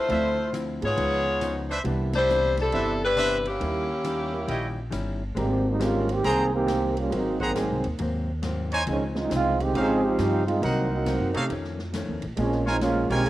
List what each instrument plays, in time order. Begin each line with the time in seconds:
Already playing: saxophone section A3 F4
0.00 saxophone section E4 C5
0.08 upright bass D2, hollow-body jazz guitar D3 F3 C4, grand piano F3 A3 C4 E4, trumpet section D4 F4 C5 E5, ride
0.13 hollow-body jazz guitar E4
0.53 hollow-body jazz guitar D3 F3 C4 E4, hi-hat pedal, ride
0.82 upright bass G#2, grand piano G#3 B3 D#4 G#4, saxophone section B3 F4 G#4 C#5, ride
0.96 upright bass C#2, hollow-body jazz guitar C#3 F3 B3 D#4, ride
1.41 hollow-body jazz guitar C#3 F3 B3 D#4, cross-stick, hi-hat pedal, ride
1.69 trumpet section D4 B4 C5 E5
1.84 upright bass C2, hollow-body jazz guitar C3 E3 B3, grand piano G3 B3 D4 E4, ride
1.88 hollow-body jazz guitar D4
2.13 saxophone section G3 D4 E4 C5, snare, ride
2.28 hollow-body jazz guitar C3 E3 B3 D4, hi-hat pedal
2.43 snare
2.57 saxophone section G3 D4 E4 A4, snare, ride
2.72 upright bass G1, hollow-body jazz guitar C3 E3 B3, grand piano G3 B3 D4 E4, trumpet section D4 B4 C5 E5, ride
2.76 hollow-body jazz guitar D4
3.05 saxophone section G3 D4 E4 B4
3.16 hollow-body jazz guitar C3 E3 B3 D4, trumpet section D4 B4 C5 E5, cross-stick, hi-hat pedal, ride
3.45 saxophone section A#3 C#4 E4 G4, ride
3.60 upright bass D#2, hollow-body jazz guitar D#3 G3 C#4 E4, grand piano G3 A#3 C#4 E4, ride
4.04 hollow-body jazz guitar D#3 G3 C#4 E4, hi-hat pedal, ride
4.33 grand piano G3 A#3 C#4 E4
4.48 upright bass A#1, hollow-body jazz guitar D#3 G3 C#4 E4, trumpet section E4 C#5 D#5 G5, ride
4.91 upright bass G1, hollow-body jazz guitar D#3 G3 C#4 E4, cross-stick, hi-hat pedal, ride
5.35 upright bass G#1, trombone section G3 A#3 C4, hollow-body jazz guitar G#3 C4 G4 A#4, grand piano G#3 A#3 C4 D#4 G4, ride
5.39 trombone section D#3
5.68 trombone section G3 A#3 C4 D#4
5.80 trombone section G3 A#3 C#4 F4, grand piano G#3 A#3 C4 D#4 G4, hollow-body jazz guitar G#3 C4 G4 A#4, snare, hi-hat pedal, ride
6.09 trombone section D#3 A#3 C4 G4, ride
6.23 upright bass C2, trombone section D#3 A#3 C4 G#4, hollow-body jazz guitar G#3 C4 G4 A#4, trumpet section G#4 C5 G5 A#5, ride
6.52 trombone section D#3 A#3 C4 G4
6.67 hollow-body jazz guitar G#3 C4 G4 A#4, snare, hi-hat pedal, ride
6.96 trombone section G3 A#3 C#4 F4, ride
7.10 upright bass G#1, hollow-body jazz guitar G#2 F#3 A#3 C4, trombone section F#3 A#3 C4 D#4, grand piano G#3 A#3 C4 D#4 F#4, ride
7.40 trombone section D#3 F#3 A#3 C4, trumpet section G#4 C5 F#5 A#5, kick
7.55 hollow-body jazz guitar G#2 F#3 A#3 C4, grand piano G#3 A#3 C4 D#4 G#4, snare, hi-hat pedal, ride
7.70 upright bass C2
7.84 upright bass D#2, ride
7.98 upright bass D#2, hollow-body jazz guitar G#2 F#3 A#3 C4, ride
8.42 hollow-body jazz guitar G#2 F#3 A#3 C4, snare, hi-hat pedal, ride
8.71 trumpet section D#4 C5 C#5 G#5, ride
8.86 upright bass C#2, hollow-body jazz guitar C#3 F3 C4 D#4, trombone section D#3 F3 G#3 C#4, ride
9.15 trombone section F3 G#3 C4, grand piano G#3 C4 C#4 D#4 F4, snare
9.19 trombone section D#4
9.30 upright bass C2, hollow-body jazz guitar C#3 F3 C4 D#4, trombone section G#3 C4 D#4 F4, snare, hi-hat pedal, ride
9.60 trombone section D#3 G#3 C4 G4, ride
9.74 upright bass G#1, hollow-body jazz guitar C#3 F3 C4 D#4, trombone section F3 C4 D#4 G#4, grand piano G#3 C4 C#4 D#4 G4, trumpet section C#4 D#4 C5 F5, ride
10.03 trombone section F3 C4 D#4 G4
10.18 upright bass G2, hollow-body jazz guitar C#3 F3 C4 D#4, snare, hi-hat pedal, ride
10.46 trombone section G#3 C4 D#4 F4, ride
10.61 upright bass C2, hollow-body jazz guitar C3 F#3, trombone section D#3 F#3 A#3 C4, grand piano F#3 A#3 C4 D#4 F#4, trumpet section D#4 A#4 C5 F#5, ride
10.66 hollow-body jazz guitar A#3 D#4
10.91 trombone section F#3 A#3 C4 D#4
11.06 hollow-body jazz guitar C3 F#3 A#3 D#4, snare, hi-hat pedal, ride
11.21 upright bass F#2
11.34 upright bass C3, grand piano A3 C4 C#4 D#4 G4, trumpet section D#4 A4 C#5 F5, ride
11.49 hollow-body jazz guitar F2 D#3 A3 C#4, upright bass F2, ride
11.64 snare
11.79 snare
11.93 hollow-body jazz guitar F2 D#3 A3 C#4, snare, hi-hat pedal, ride
12.08 upright bass D#2
12.22 upright bass A1, ride
12.37 upright bass A#1, hollow-body jazz guitar A#2 F3 G#3 C#4, trombone section F3 G#3 A#3 C#4, grand piano G#3 A#3 C4 C#4 F4, ride
12.52 snare
12.66 trombone section F3 G#3 C4 D#4, trumpet section F4 A#4 C#5 G#5, snare
12.81 hollow-body jazz guitar A#2 F3 G#3 C#4, trombone section G#3 A#3 C#4 F4, snare, hi-hat pedal, ride
13.10 upright bass B1, trombone section D#3 G#3 C4 G4, grand piano G#3 A#3 C4 C#4 F4, trumpet section F4 A#4 C#5 G#5, ride
13.24 upright bass F1, hollow-body jazz guitar A#2 F3, trombone section F3 A#3, ride